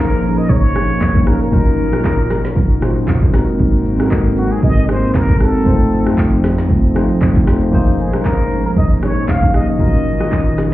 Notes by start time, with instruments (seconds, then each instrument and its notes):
Already playing: analog synth pad A#2 F3 A#3 C#4 D#4 G#4, tine electric piano A#3 C#4 D#4 G#4 C5
0.00 muted trumpet A#4
0.12 shaker
0.23 low bongo, shaker
0.38 muted trumpet D#5, shaker
0.49 muted trumpet C#5, kick, low conga, shaker
0.64 shaker
0.75 cross-stick, low bongo, shaker
0.90 shaker
1.01 kick, clap, high bongo, low conga, shaker
1.15 kick, low bongo, shaker
1.25 tine electric piano A#3 C#4 D#4 G#4 C#5, muted trumpet A#4, cross-stick, shaker
1.42 muted trumpet A#4, shaker
1.51 tine electric piano A#2 F#3 C#4 D#4 F4 A#4, analog synth pad F#3, kick, low conga, shaker
1.68 shaker
1.79 shaker
1.91 tine electric piano A#2 F3 C#4 D#4 F4 G#4, cross-stick, low bongo, shaker
1.98 tine electric piano F#3
2.04 kick, clap, high bongo, shaker
2.19 shaker
2.30 cross-stick, snare, low bongo, shaker
2.44 snare, shaker
2.56 kick, low conga, shaker
2.70 shaker
2.80 tine electric piano A#2 F#3 C#4 D#4 F4 C5, cross-stick, low bongo, shaker
2.96 shaker
3.08 kick, clap, high bongo, low conga, shaker
3.22 kick, low bongo, shaker
3.32 analog synth pad G#2 A#3 C4, tine electric piano G#3 C4 D#4 F#4 A#4, cross-stick, snare, shaker
3.48 shaker
3.60 kick, low conga, shaker
3.74 shaker
3.85 shaker
3.98 tine electric piano G#3 C4 D#4 F#4 A4, cross-stick, low bongo, shaker
4.07 tine electric piano A#4, kick, clap, high bongo, shaker
4.26 shaker
4.37 muted trumpet F#4, low bongo, shaker
4.51 muted trumpet G#4, shaker
4.63 muted trumpet D#5, kick, low conga, shaker
4.77 shaker
4.89 muted trumpet C5, cross-stick, low bongo, shaker
5.03 shaker
5.14 muted trumpet A#4, kick, clap, high bongo, low conga, shaker
5.29 kick, low bongo, shaker
5.39 tine electric piano G#3 C4 D#4 F#4 A#4, muted trumpet A4, cross-stick, shaker
5.55 shaker
5.64 analog synth pad F2 F3 A3 D#4, tine electric piano A3 C4 D#4 F4 C5, kick, low conga, shaker
5.81 shaker
5.92 shaker
6.05 tine electric piano A3 C4 D#4 F4 C5, cross-stick, shaker
6.18 kick, clap, high bongo, shaker
6.33 shaker
6.44 cross-stick, snare, low bongo, shaker
6.58 snare, shaker
6.70 kick, low conga, shaker
6.84 shaker
6.94 tine electric piano A3 C4 D#4 F4 C5, cross-stick, high bongo, low bongo, shaker
7.10 shaker
7.21 kick, clap, high bongo, low conga, shaker
7.36 kick, low bongo, shaker
7.46 tine electric piano A3 C4 D#4 F4 C5, cross-stick, snare, shaker
7.61 high bongo, shaker
7.71 analog synth pad A#2 G#3 C#4 D#4 C5, tine electric piano A#3 C#4 D#4 G#4 C5, kick, low conga, shaker
7.88 shaker
7.99 muted trumpet G#4, shaker
8.12 tine electric piano A#3 C#4 D#4 G#4 C5, muted trumpet A#4, cross-stick, low bongo, shaker
8.24 kick, clap, high bongo, shaker
8.39 shaker
8.51 low bongo, shaker
8.65 muted trumpet A#4, shaker
8.76 muted trumpet D#5, kick, low conga, shaker
8.91 shaker
9.03 muted trumpet C#5, cross-stick, low bongo, shaker
9.17 shaker
9.28 muted trumpet F5, kick, clap, high bongo, low conga, shaker
9.43 kick, low bongo, shaker
9.53 tine electric piano A#3 C#4 D#4 G#4 D#5, muted trumpet D#5, cross-stick, shaker
9.69 muted trumpet D#5, shaker
9.78 tine electric piano A#2 F#3 C#4 D#4 F4 A#4, analog synth pad D#3 F#3, kick, shaker
9.95 shaker
10.06 shaker
10.19 tine electric piano A#2 F#3 C#4 D#4 F4 A#4, cross-stick, shaker
10.32 kick, clap, shaker
10.47 shaker
10.58 cross-stick, snare, shaker